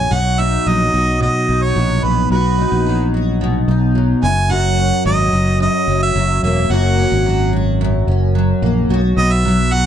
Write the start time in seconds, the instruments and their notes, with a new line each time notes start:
Already playing: steel-string acoustic guitar F#2 F#3 A#3 C#4 F#4, harmonica G#5
0.11 fingered electric bass B1, steel-string acoustic guitar B2 F#4, harmonica F#5
0.39 steel-string acoustic guitar D#4, harmonica E5
0.66 fingered electric bass A#1, steel-string acoustic guitar F#3, harmonica D#5
0.94 fingered electric bass B1, steel-string acoustic guitar F#4
1.20 steel-string acoustic guitar B2, harmonica D#5
1.49 fingered electric bass B1, steel-string acoustic guitar D#4
1.63 harmonica C#5
1.76 fingered electric bass A#1, steel-string acoustic guitar F#3
2.03 fingered electric bass A#1, steel-string acoustic guitar B3, harmonica B4
2.30 fingered electric bass B1, steel-string acoustic guitar F#4, harmonica B4
2.58 steel-string acoustic guitar D#4
2.72 fingered electric bass A#1
2.86 steel-string acoustic guitar F#3
3.14 steel-string acoustic guitar F#4
3.41 steel-string acoustic guitar B2
3.68 fingered electric bass B1, steel-string acoustic guitar D#4
3.95 steel-string acoustic guitar F#3
4.23 fingered electric bass F#1, steel-string acoustic guitar F#2, harmonica G#5
4.50 steel-string acoustic guitar F#2 F#4, harmonica F#5
4.78 steel-string acoustic guitar C#4
5.05 fingered electric bass G#1, steel-string acoustic guitar F#3, harmonica D#5
5.33 fingered electric bass F#1, steel-string acoustic guitar F#4
5.60 steel-string acoustic guitar F#2, harmonica D#5
5.88 fingered electric bass F#1, steel-string acoustic guitar C#4
6.03 harmonica E5
6.15 fingered electric bass F#1, steel-string acoustic guitar F#3
6.43 fingered electric bass E1, steel-string acoustic guitar A#3, harmonica E5
6.70 fingered electric bass F#1, steel-string acoustic guitar F#2 F#4, harmonica F#5
6.99 steel-string acoustic guitar C#4
7.12 fingered electric bass G#1
7.26 steel-string acoustic guitar F#3
7.53 steel-string acoustic guitar F#4
7.81 steel-string acoustic guitar F#2
8.07 fingered electric bass F#1, steel-string acoustic guitar C#4
8.35 steel-string acoustic guitar F#3
8.62 fingered electric bass A#1, steel-string acoustic guitar A#3
8.89 fingered electric bass B1, steel-string acoustic guitar B2 F#4
9.17 fingered electric bass B1, steel-string acoustic guitar B3, harmonica D#5
9.32 harmonica E5
9.45 steel-string acoustic guitar F#3
9.71 steel-string acoustic guitar F#4, harmonica F#5